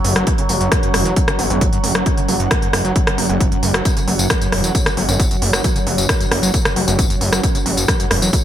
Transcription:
Already playing: F#3 C#4 F#4 C#5 F#5
0.05 F#1 F#2, open hi-hat
0.16 F#3, cross-stick, closed hi-hat
0.27 F#2, kick, closed hi-hat
0.38 C#3, closed hi-hat
0.49 F#1 F#3, open hi-hat
0.61 F#2, closed hi-hat
0.72 kick, cross-stick, closed hi-hat
0.83 F#2, closed hi-hat
0.94 E1 F#2, cross-stick, open hi-hat
1.05 F#3, closed hi-hat
1.16 F#2, kick, closed hi-hat
1.28 C#3, cross-stick, closed hi-hat
1.39 G1 F#3, open hi-hat
1.50 G1 F#2, closed hi-hat
1.61 F#2, kick, closed hi-hat
1.73 F#2, closed hi-hat
1.84 F#1 F#2, open hi-hat
1.95 F#3, cross-stick
2.06 F#2, kick, closed hi-hat
2.17 C#3, closed hi-hat
2.28 F#1 F#3, open hi-hat
2.40 F#2, closed hi-hat
2.51 F#2, kick, cross-stick, closed hi-hat
2.62 F#2, closed hi-hat
2.73 F#1 F#2, cross-stick, open hi-hat
2.85 F#3, closed hi-hat
2.96 F#2, kick, closed hi-hat
3.07 C#3, cross-stick, closed hi-hat
3.18 F#1 F#3, open hi-hat
3.29 F#1 F#2, closed hi-hat
3.40 F#2, kick, closed hi-hat
3.52 F#2, closed hi-hat
3.63 F#1 F#2, open hi-hat
3.74 F#3, cross-stick, closed hi-hat
3.85 F#2, kick, closed hi-hat, tambourine
3.97 C#3, closed hi-hat, tambourine
4.08 F#1 F#3, open hi-hat
4.19 F#2, closed hi-hat, tambourine
4.30 F#2, kick, cross-stick, closed hi-hat, tambourine
4.41 F#2, closed hi-hat, tambourine
4.52 E1 F#2, cross-stick, open hi-hat
4.64 F#3, closed hi-hat, tambourine
4.75 F#2, kick, closed hi-hat, tambourine
4.86 C#3, cross-stick, closed hi-hat, tambourine
4.97 G1 F#3, open hi-hat
5.08 G1 F#2, closed hi-hat, tambourine
5.20 F#2, kick, closed hi-hat, tambourine
5.31 F#2, closed hi-hat, tambourine
5.42 F#1 F#2, open hi-hat
5.53 F#3, cross-stick, closed hi-hat, tambourine
5.64 F#2, kick, closed hi-hat, tambourine
5.76 C#3, closed hi-hat, tambourine
5.87 F#1 F#3, open hi-hat
5.98 F#2, closed hi-hat, tambourine
6.09 kick, cross-stick, closed hi-hat, tambourine
6.20 F#2, closed hi-hat, tambourine
6.31 F#1 F#2, cross-stick, open hi-hat
6.43 F#3, closed hi-hat, tambourine
6.54 F#2, kick, closed hi-hat, tambourine
6.65 C#3, cross-stick, closed hi-hat, tambourine
6.76 F#1 F#3, open hi-hat
6.88 F#1 F#2, closed hi-hat, tambourine
6.99 F#2, kick, closed hi-hat, tambourine
7.10 F#2, closed hi-hat, tambourine
7.21 F#1 F#2, open hi-hat
7.32 F#3, cross-stick, closed hi-hat, tambourine
7.43 F#2, kick, closed hi-hat, tambourine
7.55 C#3, closed hi-hat, tambourine
7.66 F#1 F#3, open hi-hat
7.77 F#2, closed hi-hat, tambourine
7.88 F#2, kick, cross-stick, closed hi-hat, tambourine
8.00 F#2, closed hi-hat, tambourine
8.10 E1 F#2, cross-stick, open hi-hat
8.22 F#3, closed hi-hat, tambourine
8.33 F#2, kick, closed hi-hat, tambourine

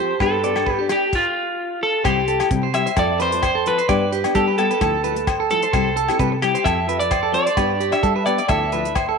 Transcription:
Already playing: F3 G4 C5
0.00 C4 F4 A4
0.20 G2 B3 D4 G4 A4 B4, kick, cross-stick, low agogo
0.44 B3 D4 G4 D5, closed hi-hat
0.56 D4 G4, cross-stick, low agogo
0.66 B4, kick
0.75 G4
0.81 D4
0.89 D4 G4, muted steel-string acoustic guitar stroke, cross-stick, closed hi-hat, low agogo
1.13 F4, kick, crash
1.83 A4
2.04 C2 G3 C4 E4 G4 C5, muted steel-string acoustic guitar stroke, kick, cross-stick, closed hi-hat, low agogo
2.28 A4, closed hi-hat
2.40 E4 G4, muted steel-string acoustic guitar stroke, cross-stick, closed hi-hat, low agogo
2.51 C3 G3 C4 E4 G4, kick, closed hi-hat
2.63 C5
2.74 G3 C4 E4 G4 E5, cross-stick, closed hi-hat, low agogo
2.86 C5, closed hi-hat
2.97 F2 F3 C4 F4 A4 D5, kick, cross-stick, closed hi-hat, low agogo
3.19 F3 C4 F4 A4 B4 C5, closed hi-hat
3.32 C4 F4 A4, closed hi-hat
3.43 C5, kick, cross-stick, closed hi-hat, low agogo
3.55 A4
3.66 F3 C4 F4 A4 B4, closed hi-hat
3.78 C5, closed hi-hat
3.89 G2 G3 B3 D4 G4 D5, kick, cross-stick, closed hi-hat, low agogo
4.12 G4, closed hi-hat
4.23 B3 D4 G4, cross-stick, closed hi-hat, low agogo
4.34 G3 B3 D4 G4 A4, kick, closed hi-hat
4.48 B4
4.58 G3 B3 D4 G4 A4, closed hi-hat, low agogo
4.71 B4, closed hi-hat
4.81 D2 F3 A3 E4 A4, kick, cross-stick, closed hi-hat, low agogo
5.03 F3 A3 E4 A4 B4, closed hi-hat
5.15 A3 A4, muted steel-string acoustic guitar stroke, closed hi-hat
5.27 C5, kick, cross-stick, closed hi-hat, low agogo
5.40 A4
5.50 F3 A3 E4 A4, closed hi-hat
5.62 C5, closed hi-hat
5.73 C2 G3 C4 E4 G4 C5, kick, cross-stick, closed hi-hat, low agogo
5.96 A4, closed hi-hat
6.08 C4 E4 G4, cross-stick, closed hi-hat, low agogo
6.19 C3 G3 C4 E4 G4 B4, kick, closed hi-hat
6.32 muted clean electric guitar stroke
6.42 G3 C4 E4 G4, cross-stick, closed hi-hat, low agogo
6.55 C5, closed hi-hat
6.64 F2 F3 C4 F4 A4 E5, muted steel-string acoustic guitar stroke, kick, cross-stick, closed hi-hat, low agogo
6.87 F3 C4 F4 A4 B4, closed hi-hat
6.99 F4 A4 D5, closed hi-hat
7.11 C5, kick, cross-stick, closed hi-hat, low agogo
7.23 A4
7.32 F3 C4 F4 A4 D5, closed hi-hat
7.46 C5, closed hi-hat
7.56 G2 B3 D4 G4 B4, kick, cross-stick, closed hi-hat, low agogo
7.80 G4, closed hi-hat
7.91 D4 G4 E5, cross-stick, closed hi-hat, low agogo
8.03 G3 D4 G4 A4, kick, closed hi-hat
8.16 B4
8.26 B3 D4 G4 D5, closed hi-hat, low agogo
8.38 D5, closed hi-hat
8.48 D2 F3 A3 E4 A4 E5, kick, cross-stick, closed hi-hat, low agogo
8.72 F3 A3 E4 B4, closed hi-hat
8.85 A3 E4, closed hi-hat
8.95 C5, kick, cross-stick, closed hi-hat, low agogo
9.09 A4

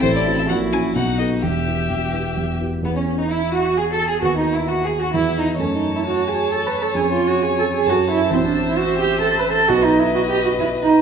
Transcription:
0.01 A1 A2 E4 A4 C5
0.16 D5
0.26 C4 E4 F#4
0.39 E5
0.48 A#1 A#2 E4 F#4 F#5
0.73 C#4 E4 F#4 G#5
0.95 B1 B2 D#4 F#4 F#5
1.19 B3 D#4 A4 D#5
1.43 E1 E2 G4 E5
1.66 B3 E4 G4
1.90 E1 E2
2.13 B3 E4 G4
2.37 E1 E2
2.61 B3 E4 G4
2.82 E2 B3 E4 G#4
2.96 C#4
3.18 D#4
3.31 E4
3.52 F#4
3.77 G#4
3.92 A4
4.06 G#4
4.22 D#2 B3 F#4
4.38 D#4
4.52 E4
4.68 F#4
4.84 G#4
4.99 F#4
5.13 E2 B3 E4 G#4
5.38 D#4
5.58 F#2 A3 C#4 A4 A5
5.62 C#5
5.73 D#4
5.96 E4
6.06 F#4
6.28 G#4
6.52 A4
6.67 B4
6.82 A4
6.95 F2 C#4 G#4 G#5
7.13 F4
7.27 F#4
7.43 G#4
7.59 A4
7.74 G#4
7.86 F#2 C#4 F#4 A4 A5
8.11 E4
8.31 A1 C4 E4 F#4 C5 E5
8.45 D4
8.69 E4
8.77 F#4
9.00 G4
9.22 A4
9.39 B4
9.52 A4
9.68 B1 B3 D#4 F#4 B4 D#5
9.84 D#4
9.99 E4
10.15 F#4
10.30 G4
10.45 F#4
10.59 E4
10.83 D#4

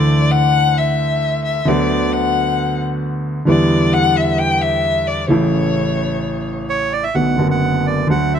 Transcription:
Already playing: D2 D3 E3 A3 D4 A4 D5
0.31 F#5
0.77 E5
1.45 E5
1.65 D2 D3 F#3 B3 F#4 D5
2.13 F#5
3.45 E2 D3 E3 G3 B3 E4 D5
3.93 F#5
4.17 E5
4.39 G5
4.62 E5
5.07 D5
5.28 A1 A2 C#3 E3 A3 E4 C#5
6.70 C#5
6.93 D5
7.03 E5
7.14 B1 B2 D3 A3 B3 F#4 F#5
7.36 F#1 F#2 D3 A3 B3
7.41 F#4
7.51 F#5
7.86 D5
8.07 D2 D3 F#3 A3 F#4 F#5
8.34 E5

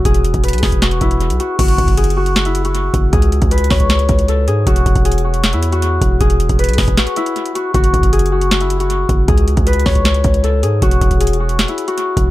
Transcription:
Already playing: E4 F#4
0.05 E1 G#4, kick, closed hi-hat
0.14 closed hi-hat
0.25 closed hi-hat
0.34 E1, kick, closed hi-hat
0.44 B4, closed hi-hat
0.48 closed hi-hat
0.53 B1, closed hi-hat
0.58 closed hi-hat
0.63 E1 G#4, kick, snare, open hi-hat
0.72 kick, closed hi-hat
0.82 F#4, snare, closed hi-hat
0.91 closed hi-hat
1.01 E1 E4, kick, closed hi-hat
1.11 closed hi-hat
1.21 closed hi-hat
1.30 B1, closed hi-hat
1.40 F#4, closed hi-hat
1.59 F#1 F#4, kick, closed hi-hat, crash
1.68 closed hi-hat
1.78 F#1, kick, closed hi-hat
1.88 kick, closed hi-hat
1.97 G#4, closed hi-hat
2.04 closed hi-hat
2.10 closed hi-hat
2.17 F#4
2.26 closed hi-hat
2.36 snare, closed hi-hat
2.45 E4, closed hi-hat
2.55 closed hi-hat
2.65 F#4, closed hi-hat
2.75 closed hi-hat
2.94 F#1, kick, closed hi-hat
3.13 C#2 G#4, kick, closed hi-hat
3.22 closed hi-hat
3.32 closed hi-hat
3.42 C#2, kick, closed hi-hat
3.51 B4, closed hi-hat
3.58 closed hi-hat
3.64 closed hi-hat
3.70 C#2 C#5, kick, snare, open hi-hat
3.80 kick, closed hi-hat
3.90 snare, closed hi-hat
3.99 closed hi-hat
4.09 C#2, kick, closed hi-hat
4.19 closed hi-hat
4.28 A4, closed hi-hat
4.47 G#2 G#4, closed hi-hat
4.67 E1 F#4, kick, closed hi-hat
4.76 closed hi-hat
4.86 E1, kick, closed hi-hat
4.95 E1, kick, closed hi-hat
5.05 G#4, closed hi-hat
5.12 closed hi-hat
5.18 closed hi-hat
5.25 F#4
5.34 closed hi-hat
5.44 snare, closed hi-hat
5.53 E2 E4, closed hi-hat
5.63 closed hi-hat
5.72 F#4, closed hi-hat
5.82 closed hi-hat
6.01 E1, kick, closed hi-hat
6.21 E1 G#4, kick, closed hi-hat
6.30 closed hi-hat
6.40 closed hi-hat
6.49 E1, kick, closed hi-hat
6.59 B4, closed hi-hat
6.64 closed hi-hat
6.69 B1, closed hi-hat
6.73 closed hi-hat
6.78 E1 G#4, kick, snare, open hi-hat
6.88 E1, kick, closed hi-hat
6.97 F#4, snare, closed hi-hat
7.07 closed hi-hat
7.16 E4, closed hi-hat
7.26 closed hi-hat
7.36 closed hi-hat
7.46 closed hi-hat
7.55 F#4, closed hi-hat
7.74 F#1 F#4, kick, closed hi-hat
7.84 closed hi-hat
7.94 F#1, kick, closed hi-hat
8.03 kick, closed hi-hat
8.13 G#4, closed hi-hat
8.19 closed hi-hat
8.26 closed hi-hat
8.32 F#4
8.41 closed hi-hat
8.51 snare, closed hi-hat
8.61 E4, closed hi-hat
8.70 closed hi-hat
8.80 F#4, closed hi-hat
8.90 closed hi-hat
9.09 F#1, kick, closed hi-hat
9.28 C#2 G#4, kick, closed hi-hat
9.38 closed hi-hat
9.48 closed hi-hat
9.57 C#2, kick, closed hi-hat
9.67 B4, closed hi-hat
9.73 closed hi-hat
9.80 closed hi-hat
9.86 C#2 C#5, kick, snare, open hi-hat
9.95 kick, closed hi-hat
10.05 snare, closed hi-hat
10.14 closed hi-hat
10.24 C#2, kick, closed hi-hat
10.34 closed hi-hat
10.44 A4, closed hi-hat
10.63 G#2 G#4, closed hi-hat
10.82 E1 F#4, kick, closed hi-hat
10.91 closed hi-hat
11.01 E1, kick, closed hi-hat
11.11 kick, closed hi-hat
11.21 G#4, closed hi-hat
11.27 closed hi-hat
11.33 closed hi-hat
11.40 F#4
11.49 closed hi-hat
11.59 snare, closed hi-hat
11.68 E4, closed hi-hat
11.78 closed hi-hat
11.88 F#4, closed hi-hat
11.98 closed hi-hat
12.17 E1, kick, closed hi-hat

